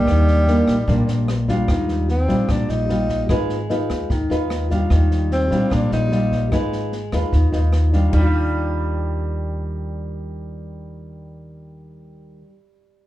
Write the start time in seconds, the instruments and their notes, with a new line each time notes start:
Already playing: sitar D#3, nylon-string guitar G3 A#3 D4, tenor saxophone G3
0.07 upright bass D#2, nylon-string guitar D#3, kick, cross-stick, snare
0.28 snare
0.47 nylon-string guitar G3 A#3 D4, snare
0.67 upright bass A#1, kick, cross-stick, snare
0.87 upright bass A#1, nylon-string guitar A#2 G3 A#3 D4, kick, snare
1.07 upright bass A#1, snare
1.28 cross-stick, snare
1.48 nylon-string guitar G3 D4 F4, kick, snare
1.68 upright bass D#2, nylon-string guitar D#3, kick, cross-stick, snare
1.88 snare
2.09 tenor saxophone C4, snare
2.28 upright bass A#1, nylon-string guitar G3 D4 F4, kick, snare
2.49 upright bass A#1, nylon-string guitar A#2, tenor saxophone D4, kick, cross-stick, snare
2.69 upright bass A#1, tenor saxophone D#4, snare
2.89 nylon-string guitar G3 F4, snare
3.09 kick, snare
3.29 upright bass G#1, nylon-string guitar G#3 D#4 F4 B4, kick, cross-stick, snare
3.49 snare
3.70 nylon-string guitar D#4 F4 B4, snare
3.90 upright bass D#2, kick, cross-stick, snare
4.10 upright bass D#2, nylon-string guitar D#3, kick, snare
4.30 upright bass D#2, nylon-string guitar D#4 F4 B4, snare
4.50 cross-stick, snare
4.70 nylon-string guitar G3 D4 F4, kick, snare
4.90 upright bass D#2, nylon-string guitar D#3, kick, cross-stick, snare
5.11 snare
5.31 tenor saxophone C4, snare
5.51 upright bass A#1, nylon-string guitar G3 D4 F4, kick, snare
5.70 upright bass A#1, nylon-string guitar A#2, tenor saxophone D4, kick, cross-stick, snare
5.91 upright bass A#1, tenor saxophone D#4, snare
6.12 nylon-string guitar G3 F4, snare
6.32 kick, snare
6.52 upright bass G#1, nylon-string guitar G#3 D#4 F4 B4, kick, cross-stick, snare
6.72 snare
6.92 snare
7.12 upright bass D#2, nylon-string guitar D#4 F4 B4, kick, cross-stick, snare
7.32 upright bass D#2, nylon-string guitar D#3, kick, snare
7.52 upright bass D#2, nylon-string guitar D#4 F4 B4, snare
7.73 cross-stick, snare
7.93 nylon-string guitar G3 D4 F4, kick, snare
8.08 nylon-string guitar D#3
8.13 upright bass D#2, sitar G3, nylon-string guitar G3, kick, crash
8.19 nylon-string guitar D4
8.23 nylon-string guitar F4